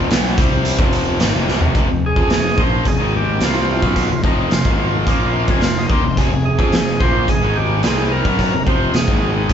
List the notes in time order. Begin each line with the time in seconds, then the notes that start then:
Already playing: C3 F3 C4
0.10 B1 B2 F#3 B3, snare, closed hi-hat
0.37 C2 C3 G3 C4, kick, closed hi-hat
0.65 closed hi-hat
0.79 F1 F2 C3 F3, kick
0.93 closed hi-hat
1.20 G#1 G#2 D#3, snare, closed hi-hat
1.34 F1 F2 C3
1.47 C2 C3 G3, snare
1.61 F1 F2 C3, floor tom
1.75 F1 F2 C3, kick, closed hi-hat
1.89 F1 F2 C3
2.06 G#4
2.16 F2 F3 C4, kick
2.30 F1 F2 C3, snare, closed hi-hat
2.58 A#1 A#2 F3 A#3 C5, kick
2.85 F1 F2 C3 G#4, kick, closed hi-hat
2.99 G#1 G#2 D#3 G#3
3.17 G4
3.41 C2 C3 G3 C4, snare, closed hi-hat
3.45 F4
3.56 snare
3.72 F4
3.82 B1 B2 F#3 B3, kick
3.96 kick, closed hi-hat
4.09 F1 F2 C3
4.23 F1 F2 C3 F3 D#4, kick
4.51 F1 F2 C3 F4, snare, closed hi-hat
4.65 G#1 G#2 D#3 G#3, kick
5.07 A#1 A#2 F3 A#3, kick, closed hi-hat
5.36 F5
5.48 F1 F2 C3 G#5, kick
5.61 F1 F2 C3 F5, snare, closed hi-hat
5.78 D#5
5.90 D#2 D#3 A#3 C5, kick
6.04 F1 F2 C3
6.17 F1 F2 C3 G#4, kick, closed hi-hat
6.31 F1 F2 C3
6.45 G#4
6.58 F2 F3 C4, kick
6.72 F1 F2 C3, snare, closed hi-hat
7.00 A#1 A#2 F3 A#3 C5, kick
7.28 F1 F2 C3 G#4, kick, closed hi-hat
7.43 G#1 G#2 D#3 G#3
7.56 G4
7.83 C2 C3 G3 C4 G#4, snare, closed hi-hat
8.12 A#4
8.25 B1 B2 F#3 B3, kick
8.39 kick, closed hi-hat
8.54 F1 F2 C3
8.66 F1 F2 C3 F3 C5, kick
8.94 F1 F2 C3 G#4, snare, closed hi-hat
9.08 G#1 G#2 D#3 G#3, kick
9.49 A#1 A#2 F3 A#3, kick, closed hi-hat